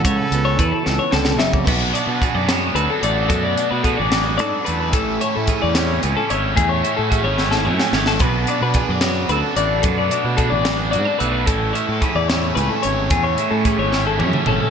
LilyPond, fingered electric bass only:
\new Staff \with { instrumentName = "Fingered electric bass" } { \clef bass \time 6/8 \key b \dorian \tempo 4. = 73 cis,16 r16 cis,8 e,16 r16 cis,16 r16 cis,8 fis,,8 | b,,8 r16 b,16 r16 fis,8. d,16 r16 a,,8 | fis,8 r16 b,8 a,,8. gis,16 r16 e,8 | a,,8 r16 a,16 r16 e,8. cis,16 r16 gis,,8 |
e,8 r16 a,8 gis,,8. fis,16 r16 gis,,8 | b,,8 r16 b,16 r16 fis,8. d,16 r16 a,,8 | fis,8 r16 b,8 a,,8. gis,16 r16 b,,8 | a,,8 r16 a,16 r16 e,8. cis,16 r16 gis,,8 |
e,8 r16 a,8 gis,,8. fis,16 r16 gis,,16 r16 | }